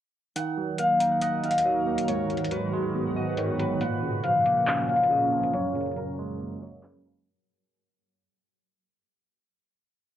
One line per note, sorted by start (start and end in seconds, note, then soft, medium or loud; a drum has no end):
0.36 2.07 D#2 medium
0.36 1.42 D#3 medium
0.36 2.07 D#3 medium
0.36 3.78 F#4 medium
0.36 2.07 A#4 medium
0.36 0.85 F#5 loud
0.36 closed hi-hat medium
0.57 1.64 F#3 medium
0.78 1.86 A#3 medium
0.78 1.17 F5 medium
0.78 closed hi-hat medium
1.00 2.08 D#4 medium
1.00 closed hi-hat medium
1.11 1.22 F#5 medium
1.22 2.08 D#5 medium
1.22 1.51 F#5 medium
1.22 closed hi-hat medium
1.44 2.08 D#3 medium
1.44 3.11 F5 medium
1.44 closed hi-hat soft
1.51 closed hi-hat medium
1.58 closed hi-hat medium
1.65 2.08 F#3 medium
1.65 3.16 D#5 medium
1.87 2.08 A#3 medium
1.98 closed hi-hat medium
2.08 3.79 G#2 medium
2.08 3.15 G#2 medium
2.08 3.79 D#3 medium
2.08 3.79 B4 medium
2.08 3.37 C#5 loud
2.08 closed hi-hat medium
2.30 3.37 D#3 medium
2.30 closed hi-hat soft
2.37 closed hi-hat medium
2.44 closed hi-hat medium
2.51 3.58 F#3 medium
2.51 3.59 B4 medium
2.51 closed hi-hat medium
2.73 3.81 G#3 loud
2.95 3.81 B3 medium
3.16 3.81 G#2 medium
3.16 4.95 D#5 medium
3.37 3.81 D#3 medium
3.37 5.28 C#5 medium
3.37 closed hi-hat medium
3.60 3.81 F#3 medium
3.60 5.65 B4 medium
3.60 closed hi-hat medium
3.81 5.52 A#2 medium
3.81 4.88 A#2 medium
3.81 5.52 F3 medium
3.81 5.52 C#4 medium
3.81 5.52 A#4 medium
3.81 4.30 F#5 medium
3.81 closed hi-hat medium
4.03 5.10 C#3 medium
4.24 5.31 F3 medium
4.24 4.62 F5 medium
4.24 closed hi-hat medium
4.46 5.54 A#3 medium
4.46 closed hi-hat medium
4.56 4.67 F#5 medium
4.67 5.54 C#4 medium
4.67 4.95 F#5 medium
4.67 clap loud
4.67 closed hi-hat medium
4.89 5.54 A#2 medium
4.89 6.56 F5 medium
4.89 closed hi-hat soft
4.96 closed hi-hat medium
5.03 closed hi-hat medium
5.11 5.54 C#3 medium
5.11 6.89 D#5 medium
5.32 5.54 F3 medium
5.44 closed hi-hat medium
5.53 6.61 F#2 medium
5.53 7.25 F#2 medium
5.53 7.25 F#3 medium
5.53 7.25 A#3 medium
5.53 7.25 G#4 medium
5.53 6.61 C#5 loud
5.53 closed hi-hat medium
5.75 6.82 C#3 medium
5.75 closed hi-hat medium
5.81 closed hi-hat medium
5.86 closed hi-hat medium
5.92 closed hi-hat medium
5.96 7.04 F#3 medium
5.96 6.89 A#4 medium
5.96 closed hi-hat medium
6.19 7.26 G#3 loud
6.40 7.26 A#3 medium
6.62 7.26 F#2 medium
6.62 8.53 C#5 medium
6.83 7.26 C#3 medium
6.83 7.11 B4 medium
6.83 clap loud
6.83 closed hi-hat medium
7.05 7.26 F#3 medium
7.05 9.17 A#4 medium